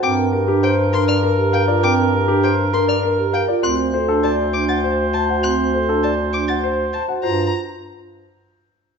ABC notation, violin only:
X:1
M:3/4
L:1/16
Q:1/4=100
K:Gm
V:1 name="Violin"
d' z3 g z c' f' z2 g z | d' z3 g z c' f' z2 g z | ^f' z3 a z d' a' z2 a z | ^f' z3 a z d' a' z2 a z |
b2 z8 z2 |]